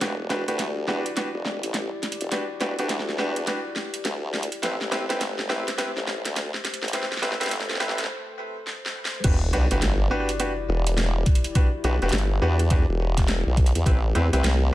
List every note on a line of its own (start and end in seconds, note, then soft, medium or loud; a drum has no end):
0.01 0.45 E1 medium
0.01 0.12 D4 medium
0.01 4.59 E4 medium
0.01 0.12 F#4 medium
0.01 0.12 G4 medium
0.01 6.90 G4 medium
0.01 0.12 B4 medium
0.01 4.59 D5 medium
0.01 snare medium
0.01 closed hi-hat medium
0.30 0.41 D4 medium
0.30 0.41 F#4 medium
0.30 0.41 G4 medium
0.30 0.41 B4 loud
0.30 snare medium
0.30 closed hi-hat soft
0.48 0.86 D2 medium
0.48 0.58 D4 medium
0.48 0.58 F#4 medium
0.48 0.58 G4 medium
0.48 0.58 B4 loud
0.48 closed hi-hat soft
0.59 snare medium
0.59 closed hi-hat medium
0.87 1.03 E2 loud
0.87 1.05 D4 loud
0.87 1.05 F#4 medium
0.87 1.05 G4 medium
0.87 1.05 B4 loud
0.87 snare medium
1.06 closed hi-hat soft
1.17 1.27 D4 medium
1.17 1.27 F#4 medium
1.17 1.27 G4 medium
1.17 1.27 B4 loud
1.17 snare medium
1.17 closed hi-hat medium
1.35 1.61 E1 medium
1.45 snare medium
1.63 1.90 A1 medium
1.63 closed hi-hat medium
1.74 snare medium
1.74 closed hi-hat medium
2.03 snare medium
2.03 closed hi-hat soft
2.12 closed hi-hat medium
2.21 2.31 E1 loud
2.21 closed hi-hat soft
2.32 2.43 D4 medium
2.32 2.43 F#4 medium
2.32 2.43 G4 medium
2.32 2.43 B4 medium
2.32 snare medium
2.32 closed hi-hat medium
2.61 2.76 E1 medium
2.61 2.71 D4 medium
2.61 2.71 F#4 medium
2.61 2.71 G4 medium
2.61 2.71 B4 loud
2.61 snare medium
2.61 closed hi-hat soft
2.79 3.17 D2 medium
2.79 2.89 D4 loud
2.79 2.89 F#4 medium
2.79 2.89 G4 medium
2.79 2.89 B4 loud
2.79 closed hi-hat soft
2.89 snare medium
2.89 closed hi-hat medium
2.99 snare medium
3.09 snare medium
3.18 3.46 E2 medium
3.18 3.35 D4 loud
3.18 3.35 F#4 medium
3.18 3.35 G4 medium
3.18 3.35 B4 loud
3.18 snare medium
3.36 closed hi-hat medium
3.47 3.58 D4 medium
3.47 3.58 F#4 medium
3.47 3.58 G4 medium
3.47 3.58 B4 loud
3.47 snare medium
3.47 closed hi-hat medium
3.76 snare medium
3.94 closed hi-hat medium
4.05 4.49 D2 loud
4.05 snare medium
4.05 closed hi-hat medium
4.34 snare medium
4.43 closed hi-hat medium
4.52 closed hi-hat soft
4.62 5.07 A1 loud
4.62 9.20 A3 medium
4.62 4.73 C4 medium
4.62 4.73 E4 medium
4.62 4.73 G4 medium
4.62 4.73 B4 medium
4.62 9.20 C5 medium
4.62 snare medium
4.62 closed hi-hat medium
4.81 snare medium
4.91 5.02 C4 loud
4.91 5.02 E4 medium
4.91 5.02 G4 medium
4.91 5.02 B4 loud
4.91 snare medium
4.91 closed hi-hat soft
5.09 5.48 G1 loud
5.09 5.20 C4 loud
5.09 5.20 E4 medium
5.09 5.20 G4 medium
5.09 5.20 B4 loud
5.09 snare medium
5.09 closed hi-hat medium
5.21 snare medium
5.21 closed hi-hat medium
5.39 snare medium
5.49 5.65 A1 loud
5.49 5.66 C4 loud
5.49 5.66 E4 medium
5.49 5.66 G4 medium
5.49 5.66 B4 loud
5.49 snare medium
5.68 snare medium
5.68 closed hi-hat medium
5.78 5.89 C4 medium
5.78 5.89 E4 medium
5.78 5.89 G4 medium
5.78 5.89 B4 loud
5.78 snare loud
5.78 closed hi-hat medium
5.97 6.22 A1 medium
5.97 snare medium
6.07 snare loud
6.25 6.51 D2 loud
6.25 snare medium
6.25 closed hi-hat medium
6.36 snare loud
6.36 closed hi-hat medium
6.54 snare medium
6.65 snare loud
6.65 closed hi-hat soft
6.74 closed hi-hat medium
6.82 6.92 A1 medium
6.82 snare medium
6.88 closed hi-hat medium
6.93 7.04 C4 medium
6.93 7.04 E4 medium
6.93 7.04 G4 medium
6.93 9.22 A4 medium
6.93 7.04 B4 medium
6.93 snare loud
6.93 closed hi-hat medium
7.02 snare medium
7.12 snare medium
7.17 snare medium
7.22 7.38 A1 medium
7.22 7.33 C4 loud
7.22 7.33 E4 medium
7.22 7.33 G4 medium
7.22 7.33 B4 loud
7.22 snare loud
7.22 closed hi-hat soft
7.32 snare medium
7.40 7.79 G1 medium
7.40 7.50 C4 loud
7.40 7.50 E4 medium
7.40 7.50 G4 medium
7.40 7.50 B4 loud
7.40 snare medium
7.40 closed hi-hat medium
7.43 snare medium
7.43 closed hi-hat soft
7.46 closed hi-hat soft
7.49 snare loud
7.49 closed hi-hat soft
7.51 closed hi-hat medium
7.56 closed hi-hat soft
7.60 snare medium
7.60 closed hi-hat soft
7.65 closed hi-hat soft
7.69 snare medium
7.71 snare medium
7.75 snare medium
7.77 snare soft
7.78 8.07 A1 loud
7.78 7.97 C4 loud
7.78 7.97 E4 medium
7.78 7.97 G4 medium
7.78 7.97 B4 loud
7.78 snare soft
7.80 snare loud
7.80 closed hi-hat soft
7.89 snare medium
7.98 snare loud
7.98 closed hi-hat medium
8.04 snare medium
8.67 snare medium
8.86 snare medium
9.05 snare loud
9.24 9.52 E1 medium
9.24 9.35 D4 medium
9.24 13.82 E4 medium
9.24 9.35 F#4 medium
9.24 9.35 G4 medium
9.24 14.74 G4 medium
9.24 9.35 B4 medium
9.24 13.82 D5 medium
9.24 kick loud
9.24 closed hi-hat medium
9.24 crash loud
9.24 sub drop medium
9.53 9.68 B1 medium
9.53 9.64 D4 medium
9.53 9.64 F#4 medium
9.53 9.64 G4 medium
9.53 9.64 B4 loud
9.53 closed hi-hat soft
9.71 9.80 G1 medium
9.71 9.81 D4 medium
9.71 9.81 F#4 medium
9.71 9.81 G4 medium
9.71 9.81 B4 loud
9.71 closed hi-hat medium
9.82 10.09 G1 loud
9.82 snare loud
9.82 closed hi-hat medium
10.11 10.28 D4 medium
10.11 10.28 F#4 medium
10.11 10.28 G4 medium
10.11 10.28 B4 loud
10.20 cross-stick soft
10.29 closed hi-hat medium
10.40 10.50 D4 medium
10.40 10.50 F#4 medium
10.40 10.50 G4 medium
10.40 10.50 B4 medium
10.40 closed hi-hat medium
10.69 11.25 E1 loud
10.87 closed hi-hat medium
10.97 snare loud
10.97 closed hi-hat medium
11.26 kick loud
11.26 closed hi-hat medium
11.35 closed hi-hat medium
11.44 closed hi-hat medium
11.55 11.66 D4 medium
11.55 11.66 F#4 medium
11.55 11.66 G4 medium
11.55 11.66 B4 medium
11.55 kick loud
11.55 closed hi-hat medium
11.84 11.99 B1 medium
11.84 11.95 D4 medium
11.84 11.95 F#4 medium
11.84 11.95 G4 medium
11.84 11.95 B4 loud
11.84 closed hi-hat soft
12.02 12.11 E1 medium
12.02 12.12 D4 loud
12.02 12.12 F#4 medium
12.02 12.12 G4 medium
12.02 12.12 B4 loud
12.02 closed hi-hat soft
12.09 snare loud
12.09 closed hi-hat soft
12.12 12.40 G1 loud
12.12 closed hi-hat medium
12.18 closed hi-hat soft
12.42 12.86 E2 medium
12.42 12.58 D4 loud
12.42 12.58 F#4 medium
12.42 12.59 G4 medium
12.42 12.59 B4 loud
12.59 cross-stick soft
12.59 closed hi-hat medium
12.70 12.81 D4 medium
12.70 12.81 F#4 medium
12.70 12.81 G4 medium
12.70 12.81 B4 loud
12.70 kick loud
12.70 closed hi-hat medium
12.89 13.44 E1 loud
13.17 kick medium
13.17 snare soft
13.17 closed hi-hat medium
13.28 snare loud
13.28 closed hi-hat medium
13.47 13.72 B1 loud
13.57 kick loud
13.57 closed hi-hat medium
13.66 closed hi-hat medium
13.75 13.84 E2 medium
13.75 closed hi-hat medium
13.86 14.13 A1 medium
13.86 14.74 A3 medium
13.86 14.74 C4 medium
13.86 13.96 C4 medium
13.86 13.96 E4 medium
13.86 13.96 G4 medium
13.86 13.96 B4 medium
13.86 kick loud
13.86 closed hi-hat medium
14.15 14.30 E2 medium
14.15 14.25 C4 loud
14.15 14.25 E4 medium
14.15 14.25 G4 medium
14.15 14.25 B4 loud
14.15 closed hi-hat soft
14.33 14.42 C2 loud
14.33 14.43 C4 medium
14.33 14.43 E4 medium
14.33 14.43 G4 medium
14.33 14.43 B4 loud
14.33 closed hi-hat medium
14.44 14.71 C2 medium
14.44 snare loud
14.44 closed hi-hat medium